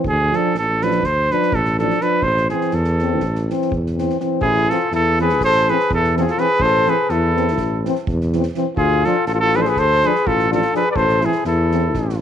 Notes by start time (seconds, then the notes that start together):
0.04 D2 G#4, kick
0.31 F3 D4, snare
0.36 A4
0.54 A1, snare
0.58 A4
0.81 F3 D4 B4, snare
0.91 snare
1.03 D2 C5, kick, snare
1.31 F3 D4 B4, snare
1.42 snare
1.52 A1 A4, kick
1.65 snare
1.79 F3 D4 A4, snare
1.90 snare
2.01 F3 D4 B4, snare
2.22 A1 C5, kick
2.37 snare
2.49 E3 C4 G#4, snare
2.61 snare
2.71 E2 A4, snare
2.84 snare
2.99 E3 C4, snare
3.20 A1, kick, snare
3.35 snare
3.50 E3 C4, snare
3.61 snare
3.71 E2, kick
3.86 snare
3.97 E3 C4, snare
4.09 snare
4.20 E3 C4, snare
4.41 A1 E4 G#4, kick
4.69 E3 C4 F4 A4, snare
4.92 E2 E4 A4, snare
5.18 E3 C4 G#4 B4, snare
5.29 snare
5.40 A1, kick, snare
5.44 A4 C5
5.68 E3 C4 G#4 B4, snare
5.80 snare
5.90 E2 A4, kick
5.95 E4
6.04 snare
6.16 E3 C4 A4, snare
6.20 F4 G#4
6.27 F4 A4, snare
6.37 E3 C4 B4, snare
6.41 G#4
6.60 A1 A4 C5, kick
6.85 E3 C4, snare
6.89 G#4 B4
7.09 E2 E4 A4, snare
7.35 E3 C4, snare
7.48 snare
7.57 A1, kick, snare
7.85 E3 C4, snare
7.95 snare
8.07 E2, kick
8.21 snare
8.32 E3 C4, snare
8.43 snare
8.54 E3 C4, snare
8.77 D2 F4 G#4, kick
9.04 F3 D4 F4 A4, snare
9.26 A1 F4 A4, snare
9.34 F4 A4
9.40 F4 A4
9.53 F3 D4 G#4 B4, snare
9.61 A4 C5
9.65 G#4, snare
9.69 B4
9.76 D2 A4 C5, kick, snare
10.03 F3 D4 G#4 B4, snare
10.15 snare
10.27 A1 F4 A4, kick
10.39 snare
10.50 F3 D4 F4 A4, snare
10.62 snare
10.73 F3 D4 G#4 B4, snare
10.91 B4 D5
10.95 A1 A4 C5, kick
11.09 snare
11.21 E3 C4 E4, snare
11.25 G#4
11.32 snare
11.44 E2 E4 A4, snare
11.71 E3 C4, snare
11.94 A1, kick, snare
12.09 snare